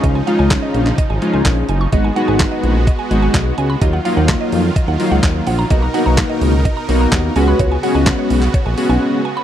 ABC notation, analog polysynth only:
X:1
M:4/4
L:1/8
Q:1/4=127
K:Dbmix
V:1 name="Analog polysynth"
[A,DEF] [A,DEF]2 z2 [A,DEF]2 z | [A,CEG] [A,CEG]2 z2 [A,CEG]2 z | [G,B,EF] [G,B,EF]2 z2 [G,B,EF]2 z | [^A,=B,^D^F] [A,B,DF]2 z2 [A,B,DF]2 [_A,C_DG]- |
[A,CDG] [A,CDG]2 z2 [A,CDG]2 z |]